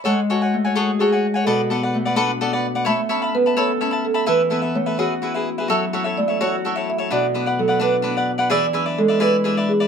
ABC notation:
X:1
M:6/8
L:1/16
Q:3/8=85
K:F#m
V:1 name="Cavaquinho"
[Acfg] z [Acfg] [cfg] z [cfg] [Acfg] z [Acfg] [cfg] z [cfg] | [ABdf] z [ABdf] [Bdf] z [Bdf] [ABdf] z [ABdf] [Bdf] z [Bdf] | [ceab] z [ceab] [eab] z [eab] [ceab] z [ceab] [eab] z [eab] | [EABe] z [EABe] [ABe] z [ABe] [FGBe] z [FGBe] [GBe] z [GBe] |
[FAce] z [FAce] [Ace] z [Ace] [FAce] z [FAce] [Ace] z [Ace] | [DBdf] z [DBdf] [Bdf] z [Bdf] [DBdf] z [DBdf] [Bdf] z [Bdf] | [GBde] z [GBde] [Bde] z [Bde] [GBde] z [GBde] [Bde] z [Bde] |]
V:2 name="Marimba"
c8 G4 | A8- A2 z2 | e4 B2 c4 A2 | B4 c2 c4 z2 |
e4 d2 c4 e2 | d4 A2 B4 z2 | d4 A2 B4 G2 |]
V:3 name="Harp"
G,2 F2 A,2 G2 F2 z2 | B,,2 B,2 A,2 D2 B,2 z2 | A,2 C2 B,2 A2 C2 z2 | E,2 B,2 A,2 F2 E2 z2 |
F,2 E2 A,2 F2 E2 z2 | B,,2 B,2 F,2 D2 B,2 z2 | E,2 D2 G,2 E2 D2 z2 |]